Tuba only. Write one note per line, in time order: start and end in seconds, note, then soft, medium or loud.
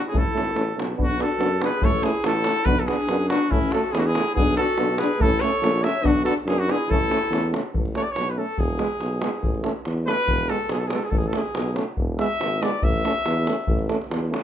0.13 0.24 A1 medium
0.34 0.53 G#1 medium
0.54 0.73 A1 medium
0.77 0.95 B1 medium
0.98 1.21 B1 medium
1.39 1.62 F#2 medium
1.81 2.05 A1 medium
2.23 2.47 A1 loud
2.66 2.89 B1 medium
3.08 3.31 F#2 loud
3.49 3.73 A1 medium
3.94 4.16 E2 loud
4.36 4.59 B1 medium
4.78 5.01 B1 medium
5.19 5.42 A1 medium
5.62 5.85 A#1 loud
6.03 6.26 B1 medium
6.46 6.69 F#2 loud
6.87 7.11 A1 medium
7.30 7.54 E2 medium
7.73 7.97 A1 medium
8.16 8.39 B1 medium
8.58 8.81 E1 medium
9.00 9.23 B1 medium
9.42 9.66 A1 medium
9.86 10.09 E2 medium
10.27 10.50 E1 medium
10.69 10.93 B1 medium
11.12 11.36 A1 medium
11.56 11.80 B1 medium
11.97 12.21 E1 medium
12.40 12.64 G#1 medium
12.82 13.06 A1 loud
13.25 13.49 E2 medium
13.68 13.92 A1 loud
14.10 14.33 E2 medium